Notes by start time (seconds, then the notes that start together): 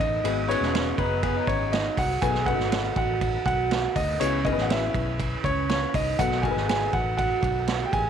Already playing: D#3 B3 A4
0.00 A1 D#4 D#5, kick, ride
0.23 G#1 G#2 F#3 B3 D#4 F#4 G#4 B4, ride
0.48 B3 C#4 D#4 F#4 G#4 B4 C#5, ride
0.61 E1, snare
0.75 snare, ride
0.98 F#1 B3 D#4 B4, kick, ride
1.23 B3 G#4 B4, kick, ride
1.36 F#3 D#4
1.47 G#1 C#4 C#5, kick, ride
1.73 D#4 D#5, snare, ride
1.97 C2 F#4 F#5, kick, open hi-hat, ride
2.22 B1 B2 D#3 B3 D#4 F#4 G#4 A4 B4 G#5, kick, hi-hat pedal, ride
2.35 snare
2.46 B3 C#4 F#4 A4 B4 F#5, kick, ride
2.53 D#4
2.59 G#1, snare
2.72 snare, ride
2.96 A1 F#4 F#5, kick, ride
3.21 kick, ride
3.46 B1 F#4 F#5, kick, ride
3.71 snare, ride
3.96 D2 D#4 D#5, kick, open hi-hat, ride
4.20 C#2 C#3 E3 B3 C#4 E4 G#4 B4 C#5, hi-hat pedal, ride
4.45 B3 C#4 D#4 E4 G#4 A#4 D#5, kick, ride
4.53 B4
4.58 A1 F#5, snare
4.62 F#4
4.69 E4 E5, snare, ride
4.94 B1, kick, ride
5.20 kick, ride
5.44 C#2 C#4 C#5, kick, ride
5.69 C#4 C#5, snare, ride
5.92 C2 D#4 D#5, kick, open hi-hat, ride
6.19 B1 B2 D#3 B3 D#4 F#4 A4 B4 F#5, kick, hi-hat pedal, ride
6.31 snare
6.42 B3 D#4 F#4 A4 A#4 G#5, kick, ride
6.51 B4
6.56 G#1, snare
6.69 G#4 G#5, snare, ride
6.93 A1 F#4 F#5, kick, ride
7.17 F#4 F#5, kick, ride
7.43 B1, kick, ride
7.67 snare, ride
7.85 G4 G5
7.91 A1 G#4 G#5, kick, ride